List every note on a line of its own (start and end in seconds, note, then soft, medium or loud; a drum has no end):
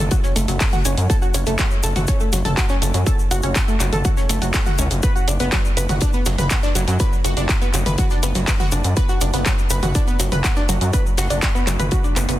0.11 0.15 F#4 medium
0.11 0.15 F#5 medium
0.11 kick loud
0.11 closed hi-hat medium
0.11 mid tom medium
0.11 shaker soft
0.23 0.34 C#4 medium
0.23 0.34 C#5 medium
0.23 snare soft
0.23 shaker soft
0.36 0.46 F#1 medium
0.36 0.46 A3 loud
0.36 0.46 A4 medium
0.36 closed hi-hat medium
0.36 open hi-hat loud
0.36 shaker medium
0.48 0.58 F#1 medium
0.48 0.55 F#3 medium
0.48 0.55 F#4 medium
0.48 closed hi-hat medium
0.48 shaker soft
0.60 0.67 A4 medium
0.60 0.67 A5 medium
0.60 kick loud
0.60 snare loud
0.60 clap loud
0.60 closed hi-hat medium
0.60 open hi-hat medium
0.60 shaker medium
0.73 0.79 F#4 loud
0.73 0.79 F#5 medium
0.73 mid tom medium
0.73 shaker soft
0.85 0.95 F#1 medium
0.85 0.92 C#4 medium
0.85 0.92 C#5 medium
0.85 closed hi-hat medium
0.85 open hi-hat loud
0.85 shaker loud
0.98 1.07 F#2 medium
0.98 closed hi-hat medium
0.98 closed hi-hat soft
0.98 shaker soft
1.10 1.20 A4 loud
1.10 1.20 A5 medium
1.10 kick loud
1.10 closed hi-hat medium
1.10 shaker soft
1.22 1.32 F#4 medium
1.22 1.32 F#5 medium
1.22 shaker soft
1.34 1.44 F#1 medium
1.34 1.38 C#4 medium
1.34 1.38 C#5 medium
1.34 closed hi-hat medium
1.34 open hi-hat loud
1.34 shaker medium
1.47 1.57 F#1 medium
1.47 1.53 A3 loud
1.47 1.53 A4 medium
1.47 closed hi-hat soft
1.47 closed hi-hat medium
1.47 shaker soft
1.58 1.63 F#3 loud
1.58 1.63 F#4 medium
1.58 kick loud
1.58 snare loud
1.58 clap loud
1.58 closed hi-hat medium
1.58 shaker medium
1.71 shaker soft
1.83 1.93 F#1 loud
1.83 1.88 A4 loud
1.83 1.87 A5 medium
1.83 closed hi-hat medium
1.83 open hi-hat loud
1.83 shaker loud
1.96 2.06 F#1 medium
1.96 2.02 F#4 medium
1.96 2.02 F#5 medium
1.96 closed hi-hat medium
1.96 mid tom medium
1.96 shaker soft
2.07 2.18 C#4 medium
2.07 2.18 C#5 medium
2.07 kick loud
2.07 closed hi-hat medium
2.07 shaker medium
2.20 2.30 A3 medium
2.20 2.30 A4 medium
2.20 shaker soft
2.33 2.43 F#1 medium
2.33 2.37 F#3 medium
2.33 2.37 F#4 medium
2.33 snare medium
2.33 closed hi-hat medium
2.33 open hi-hat loud
2.33 shaker loud
2.45 2.55 F#1 medium
2.45 2.52 A4 loud
2.45 2.52 A5 medium
2.45 closed hi-hat medium
2.45 mid tom medium
2.45 shaker soft
2.57 2.64 F#4 medium
2.57 2.64 F#5 medium
2.57 kick loud
2.57 snare loud
2.57 clap loud
2.57 closed hi-hat medium
2.57 shaker medium
2.69 2.76 C#4 loud
2.69 2.76 C#5 medium
2.69 snare soft
2.69 shaker soft
2.82 2.92 F#1 medium
2.82 2.92 A3 medium
2.82 2.92 A4 medium
2.82 closed hi-hat medium
2.82 open hi-hat loud
2.82 shaker loud
2.94 3.04 F#2 medium
2.94 3.01 F#3 medium
2.94 3.01 F#4 medium
2.94 closed hi-hat medium
2.94 shaker soft
3.06 3.16 A4 medium
3.06 3.16 A5 medium
3.06 kick loud
3.06 closed hi-hat medium
3.06 shaker medium
3.19 shaker soft
3.31 3.41 F#1 loud
3.31 3.38 F#4 loud
3.31 3.38 F#5 medium
3.31 closed hi-hat medium
3.31 open hi-hat loud
3.31 shaker medium
3.42 3.53 F#1 medium
3.42 3.50 C#4 medium
3.42 3.50 C#5 medium
3.42 closed hi-hat medium
3.42 shaker soft
3.55 kick loud
3.55 snare loud
3.55 clap loud
3.55 closed hi-hat medium
3.55 shaker medium
3.68 3.75 A3 loud
3.68 3.75 A4 medium
3.68 shaker soft
3.80 3.90 F#1 medium
3.80 3.87 F#3 medium
3.80 3.87 F#4 medium
3.80 clap medium
3.80 closed hi-hat medium
3.80 open hi-hat loud
3.80 shaker loud
3.93 4.02 F#1 medium
3.93 3.97 A4 loud
3.93 3.97 A5 medium
3.93 closed hi-hat medium
3.93 mid tom loud
3.93 shaker soft
4.05 4.09 F#4 medium
4.05 4.09 F#5 medium
4.05 kick loud
4.05 closed hi-hat loud
4.05 closed hi-hat medium
4.05 mid tom medium
4.05 shaker medium
4.17 4.27 C#4 medium
4.17 4.27 C#5 medium
4.17 snare soft
4.17 shaker soft
4.29 4.39 F#1 medium
4.29 4.39 A3 loud
4.29 4.39 A4 medium
4.29 closed hi-hat medium
4.29 open hi-hat loud
4.29 shaker medium
4.42 4.52 F#1 medium
4.42 4.48 F#3 medium
4.42 4.48 F#4 medium
4.42 closed hi-hat medium
4.42 shaker soft
4.54 4.61 A4 medium
4.54 4.61 A5 medium
4.54 kick loud
4.54 snare loud
4.54 clap loud
4.54 closed hi-hat medium
4.54 open hi-hat medium
4.54 shaker medium
4.66 4.73 F#4 loud
4.66 4.73 F#5 medium
4.66 mid tom medium
4.66 shaker soft
4.78 4.89 C#2 loud
4.78 4.85 C#4 medium
4.78 4.85 C#5 medium
4.78 closed hi-hat medium
4.78 open hi-hat loud
4.78 shaker loud
4.91 5.01 F#1 medium
4.91 closed hi-hat soft
4.91 closed hi-hat medium
4.91 shaker soft
5.03 5.13 B4 loud
5.03 5.13 B5 medium
5.03 kick loud
5.03 closed hi-hat medium
5.03 shaker medium
5.16 5.25 F#4 medium
5.16 5.25 F#5 medium
5.16 shaker soft
5.28 5.38 F#1 loud
5.28 5.32 D4 medium
5.28 5.32 D5 medium
5.28 closed hi-hat medium
5.28 open hi-hat loud
5.28 shaker medium
5.40 5.50 F#1 medium
5.40 5.47 B3 loud
5.40 5.47 B4 medium
5.40 closed hi-hat soft
5.40 closed hi-hat medium
5.40 shaker soft
5.52 5.56 F#3 loud
5.52 5.56 F#4 medium
5.52 kick loud
5.52 snare loud
5.52 clap loud
5.52 closed hi-hat medium
5.52 shaker soft
5.65 shaker soft
5.77 5.87 F#1 loud
5.77 5.81 B4 loud
5.77 5.81 B5 medium
5.77 closed hi-hat medium
5.77 open hi-hat loud
5.77 shaker medium
5.89 5.99 F#1 medium
5.89 5.96 F#4 medium
5.89 5.96 F#5 medium
5.89 closed hi-hat medium
5.89 mid tom loud
5.89 shaker soft
6.01 6.11 D4 medium
6.01 6.11 D5 medium
6.01 kick loud
6.01 closed hi-hat medium
6.01 shaker soft
6.13 6.24 B3 medium
6.13 6.24 B4 medium
6.13 shaker soft
6.26 6.36 F#1 medium
6.26 6.30 F#3 medium
6.26 6.30 F#4 medium
6.26 snare medium
6.26 closed hi-hat medium
6.26 open hi-hat loud
6.26 shaker medium
6.38 6.48 F#1 medium
6.38 6.45 B4 loud
6.38 6.45 B5 medium
6.38 closed hi-hat medium
6.38 mid tom medium
6.38 shaker soft
6.50 6.57 F#4 medium
6.50 6.57 F#5 medium
6.50 kick loud
6.50 snare loud
6.50 clap loud
6.50 closed hi-hat medium
6.50 shaker medium
6.63 6.70 D4 loud
6.63 6.70 D5 medium
6.63 snare soft
6.63 shaker soft
6.75 6.85 F#1 loud
6.75 6.79 F#3 loud
6.75 6.79 F#4 medium
6.75 closed hi-hat medium
6.75 open hi-hat loud
6.75 shaker loud
6.88 6.98 F#2 medium
6.88 6.94 F#3 medium
6.88 6.94 F#4 medium
6.88 closed hi-hat medium
6.88 shaker soft
6.99 7.10 B4 medium
6.99 7.10 B5 medium
6.99 kick loud
6.99 closed hi-hat medium
6.99 shaker soft
7.13 shaker soft
7.24 7.34 F#1 loud
7.24 7.31 F#4 loud
7.24 7.31 F#5 medium
7.24 closed hi-hat medium
7.24 open hi-hat loud
7.24 shaker medium
7.37 7.47 F#1 medium
7.37 7.43 D4 medium
7.37 7.44 D5 medium
7.37 closed hi-hat medium
7.37 shaker soft
7.49 kick loud
7.49 snare loud
7.49 clap loud
7.49 closed hi-hat medium
7.49 shaker soft
7.62 7.68 B3 loud
7.62 7.68 B4 medium
7.62 shaker soft
7.74 7.84 F#1 medium
7.74 7.80 F#3 medium
7.74 7.80 F#4 medium
7.74 clap medium
7.74 closed hi-hat medium
7.74 open hi-hat loud
7.74 shaker loud
7.86 7.96 F#1 medium
7.86 7.90 B4 loud
7.86 7.90 B5 medium
7.86 closed hi-hat medium
7.86 mid tom loud
7.86 shaker soft
7.98 8.02 F#4 medium
7.98 8.02 F#5 medium
7.98 kick loud
7.98 closed hi-hat loud
7.98 closed hi-hat medium
7.98 mid tom loud
7.98 shaker medium
8.10 8.21 D4 medium
8.10 8.20 D5 medium
8.10 snare soft
8.10 shaker soft
8.23 8.33 F#1 medium
8.23 8.33 B3 loud
8.23 8.33 B4 medium
8.23 closed hi-hat medium
8.23 open hi-hat loud
8.23 shaker medium
8.35 8.45 F#1 medium
8.35 8.42 F#3 medium
8.35 8.42 F#4 medium
8.35 closed hi-hat medium
8.35 shaker soft
8.46 8.54 B4 medium
8.46 8.54 B5 medium
8.46 kick loud
8.46 snare loud
8.46 clap loud
8.46 closed hi-hat medium
8.46 open hi-hat medium
8.46 shaker medium
8.60 8.66 F#4 loud
8.60 8.66 F#5 medium
8.60 mid tom medium
8.60 shaker soft
8.72 8.82 F#1 loud
8.72 8.79 D4 medium
8.72 8.79 D5 medium
8.72 closed hi-hat medium
8.72 open hi-hat loud
8.72 shaker medium
8.84 8.94 F#2 medium
8.84 closed hi-hat medium
8.84 closed hi-hat soft
8.84 shaker soft
8.96 9.07 B4 loud
8.96 9.07 B5 medium
8.96 kick loud
8.96 closed hi-hat medium
8.96 shaker soft
9.09 9.19 F#4 medium
9.09 9.19 F#5 medium
9.09 shaker soft
9.21 9.31 F#1 medium
9.21 9.25 D4 medium
9.21 9.25 D5 medium
9.21 closed hi-hat medium
9.21 open hi-hat loud
9.21 shaker medium
9.33 9.43 F#1 medium
9.33 9.40 B3 loud
9.33 9.40 B4 medium
9.33 closed hi-hat soft
9.33 closed hi-hat medium
9.33 shaker soft
9.45 9.50 F#3 loud
9.45 9.50 F#4 medium
9.45 kick loud
9.45 snare loud
9.45 clap loud
9.45 closed hi-hat medium
9.45 shaker soft
9.58 shaker soft
9.70 9.80 F#1 medium
9.70 9.74 B4 loud
9.70 9.74 B5 medium
9.70 closed hi-hat medium
9.70 open hi-hat loud
9.70 shaker medium
9.83 9.93 F#1 medium
9.83 9.89 F#4 medium
9.83 9.89 F#5 medium
9.83 closed hi-hat medium
9.83 mid tom loud
9.83 shaker soft
9.95 10.05 D4 medium
9.95 10.05 D5 medium
9.95 kick loud
9.95 closed hi-hat medium
9.95 shaker medium
10.07 10.17 B3 medium
10.07 10.17 B4 medium
10.07 shaker soft
10.19 10.30 F#1 loud
10.19 10.24 F#3 medium
10.19 10.24 F#4 medium
10.19 snare medium
10.19 closed hi-hat medium
10.19 open hi-hat loud
10.19 shaker medium
10.32 10.42 F#1 medium
10.32 10.39 B4 loud
10.32 10.39 B5 medium
10.32 closed hi-hat medium
10.32 mid tom medium
10.32 shaker soft
10.44 10.51 F#4 medium
10.44 10.51 F#5 medium
10.44 kick loud
10.44 snare loud
10.44 clap loud
10.44 closed hi-hat medium
10.44 shaker soft
10.56 10.63 D4 loud
10.56 10.63 D5 medium
10.56 snare soft
10.56 shaker soft
10.69 10.79 F#1 loud
10.69 10.73 F#3 loud
10.69 10.73 F#4 medium
10.69 closed hi-hat medium
10.69 open hi-hat loud
10.69 shaker medium
10.81 10.91 F#2 medium
10.81 10.88 F#3 medium
10.81 10.88 F#4 medium
10.81 closed hi-hat medium
10.81 shaker soft
10.93 11.03 B4 medium
10.93 11.03 B5 medium
10.93 kick loud
10.93 closed hi-hat medium
10.93 shaker medium
11.06 shaker soft
11.17 11.28 F#1 loud
11.17 11.25 F#4 loud
11.17 11.25 F#5 medium
11.17 snare loud
11.17 closed hi-hat medium
11.17 open hi-hat loud
11.17 shaker medium
11.30 11.40 F#1 medium
11.30 11.37 D4 medium
11.30 11.37 D5 medium
11.30 closed hi-hat medium
11.30 shaker soft
11.42 kick loud
11.42 snare loud
11.42 clap loud
11.42 closed hi-hat medium
11.42 shaker soft
11.55 11.61 B3 loud
11.55 11.61 B4 medium
11.55 shaker soft
11.67 11.77 F#1 medium
11.67 11.74 F#3 medium
11.67 11.74 F#4 medium
11.67 clap medium
11.67 closed hi-hat medium
11.67 open hi-hat loud
11.67 shaker medium
11.79 11.89 F#1 medium
11.79 11.83 B4 loud
11.79 11.83 B5 medium
11.79 closed hi-hat medium
11.79 mid tom medium
11.79 shaker soft
11.91 11.96 F#4 medium
11.91 11.96 F#5 medium
11.91 kick loud
11.91 closed hi-hat medium
11.91 mid tom medium
11.91 shaker soft
12.04 12.14 D4 medium
12.04 12.14 D5 medium
12.04 shaker soft
12.16 12.26 F#1 medium
12.16 12.26 B3 medium
12.16 12.26 B4 medium
12.16 clap medium
12.16 closed hi-hat medium
12.16 open hi-hat loud
12.16 shaker medium
12.29 12.38 F#1 medium
12.29 12.35 B3 medium
12.29 12.35 B4 medium
12.29 closed hi-hat medium
12.29 shaker soft